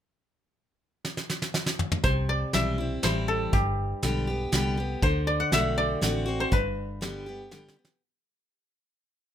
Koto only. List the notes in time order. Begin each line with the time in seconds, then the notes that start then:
2.04 C5
2.29 D5
2.54 E5
3.04 C5
3.28 A4
3.53 G4
5.03 C5
5.27 D5
5.40 F#5
5.53 E5
5.78 D5
6.40 C5
6.53 B4